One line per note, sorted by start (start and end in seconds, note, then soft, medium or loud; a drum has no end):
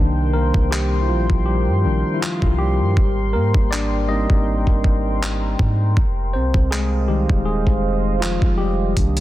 0.00 0.52 C2 loud
0.00 1.84 D#3 medium
0.00 0.36 A#3 soft
0.00 1.85 D4 medium
0.00 2.99 D#4 medium
0.00 5.93 A#4 medium
0.00 2.93 C5 medium
0.00 2.99 D5 medium
0.00 2.98 D#5 loud
0.00 2.93 G5 medium
0.00 5.93 C6 medium
0.33 0.70 A#3 medium
0.33 0.72 A#4 medium
0.54 1.11 C2 medium
0.54 kick medium
0.71 1.01 G3 medium
0.71 1.03 G4 medium
0.71 clap loud
1.02 1.09 E4 medium
1.08 1.29 A#1 loud
1.08 1.45 F3 medium
1.08 1.47 F4 medium
1.30 1.69 A#1 loud
1.30 kick medium
1.46 2.12 G3 medium
1.46 2.17 G4 medium
1.68 1.86 G2 loud
1.84 2.04 A#1 loud
1.84 2.18 D#3 soft
1.84 2.18 A#3 soft
1.84 2.18 D4 medium
2.14 2.21 E4 medium
2.21 2.57 F3 medium
2.21 2.60 F4 medium
2.21 clap loud
2.42 2.82 C2 loud
2.42 kick medium
2.58 3.31 G3 medium
2.58 3.36 G4 medium
2.80 2.96 G2 medium
2.97 3.36 G#1 loud
2.97 5.94 G5 medium
2.97 5.94 A#5 medium
2.97 kick loud
3.33 3.54 G#2 medium
3.33 3.70 A#3 medium
3.33 3.72 A#4 medium
3.54 4.27 G#1 medium
3.54 kick loud
3.71 4.07 D4 medium
3.71 4.10 D5 loud
3.71 clap loud
4.09 4.60 G3 medium
4.09 4.60 A#3 medium
4.09 4.61 C4 medium
4.09 4.81 D#4 medium
4.09 4.80 D#5 loud
4.30 4.66 G#1 loud
4.30 kick medium
4.67 5.56 G#1 loud
4.67 kick medium
4.84 kick medium
5.23 clap loud
5.59 5.95 G#2 loud
5.59 kick medium
5.97 6.36 F1 loud
5.97 8.94 C5 medium
5.97 8.94 D#5 medium
5.97 8.94 F5 medium
5.97 8.94 D#6 medium
5.97 kick loud
6.33 6.54 C2 medium
6.33 6.70 C4 medium
6.33 6.72 C5 medium
6.54 7.26 C2 medium
6.54 kick medium
6.71 7.07 G#3 medium
6.71 7.10 G#4 medium
6.71 clap loud
7.08 8.92 D#3 medium
7.08 7.45 G3 medium
7.08 7.46 G#3 medium
7.08 8.93 D#4 medium
7.08 7.47 G4 medium
7.29 7.66 D#1 loud
7.29 kick medium
7.45 8.18 G#3 medium
7.45 8.23 G#4 medium
7.67 8.39 F1 loud
7.67 kick medium
8.20 8.57 F3 medium
8.20 8.56 F4 medium
8.20 clap loud
8.42 8.95 F1 loud
8.42 kick medium
8.58 9.20 G3 medium
8.58 9.20 G4 medium
8.96 9.20 C2 loud
8.96 9.20 D#3 medium
8.96 9.20 A#3 soft
8.96 9.20 D4 medium
8.96 9.20 C5 medium
8.96 9.20 G5 medium
8.96 9.20 A#5 medium
8.96 9.20 D6 medium
8.96 kick loud
8.96 closed hi-hat medium
9.17 closed hi-hat soft